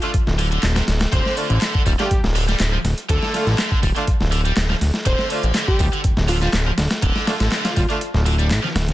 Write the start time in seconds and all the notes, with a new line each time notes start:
0.02 D3 A3 D4 F4, closed hi-hat
0.14 kick, closed hi-hat
0.27 D1, snare
0.39 D3, closed hi-hat, open hi-hat
0.51 D3, closed hi-hat
0.63 D1, snare, clap, closed hi-hat
0.76 C3, snare, closed hi-hat
0.88 D1, snare, closed hi-hat, open hi-hat
1.01 snare, closed hi-hat
1.12 D1 D3 C5, kick, closed hi-hat
1.26 snare
1.37 D3 A3 D4 F4, closed hi-hat, open hi-hat
1.50 A1, closed hi-hat
1.61 D3, snare, clap, closed hi-hat
1.74 D3, kick
1.86 D1 G3, kick, closed hi-hat, open hi-hat
1.99 D3 A3 D4 F4 G4, snare, closed hi-hat
2.11 D1, kick, closed hi-hat
2.23 D1, snare
2.35 D3, open hi-hat
2.48 G3, snare, closed hi-hat
2.60 D1, snare, clap, closed hi-hat
2.73 F3
2.84 D1, snare, closed hi-hat, open hi-hat
2.98 closed hi-hat
3.09 D1 D3 A4, kick, closed hi-hat
3.23 snare
3.34 D3 A3 D4 F4, snare, closed hi-hat, open hi-hat
3.47 A1, snare, closed hi-hat
3.58 D3, snare, clap, closed hi-hat
3.71 D3, kick
3.83 D1 G3, kick, closed hi-hat, open hi-hat
3.96 D3 A3 D4 F4, closed hi-hat
4.07 kick, closed hi-hat
4.21 D1, snare
4.32 D3, closed hi-hat, open hi-hat
4.45 G3, closed hi-hat
4.57 D1, snare, clap, closed hi-hat
4.70 F3, snare
4.81 D1, snare, closed hi-hat, open hi-hat
4.94 snare, closed hi-hat
5.05 D1 D3 C5, kick, closed hi-hat
5.19 snare
5.30 D3 A3 D4 F4, closed hi-hat, open hi-hat
5.43 A1, closed hi-hat
5.54 D3, snare, clap, closed hi-hat
5.68 D3 G4, kick
5.79 D1 G3, kick, closed hi-hat, open hi-hat
5.92 D3, closed hi-hat
6.04 D1, kick, closed hi-hat
6.17 D1, snare
6.28 D3 F4, open hi-hat
6.42 G3 F4, snare, closed hi-hat
6.53 D1, snare, clap, closed hi-hat
6.66 F3
6.78 D1, snare, closed hi-hat, open hi-hat
6.91 snare, closed hi-hat
7.02 D1 D3, kick, closed hi-hat
7.16 snare
7.27 D3 A3 D4 F4, snare, closed hi-hat, open hi-hat
7.40 A1, snare, closed hi-hat
7.52 D3, snare, clap, closed hi-hat
7.65 D3 F4, snare, closed hi-hat
7.76 D1 G3 F4, kick, closed hi-hat, open hi-hat
7.89 D3 A3 D4 F4, closed hi-hat
8.01 closed hi-hat
8.14 D1, snare
8.26 D3, closed hi-hat, open hi-hat
8.39 G3, closed hi-hat
8.50 A1, snare, clap, closed hi-hat
8.63 F3, snare
8.75 D1, snare, closed hi-hat, open hi-hat
8.88 snare, closed hi-hat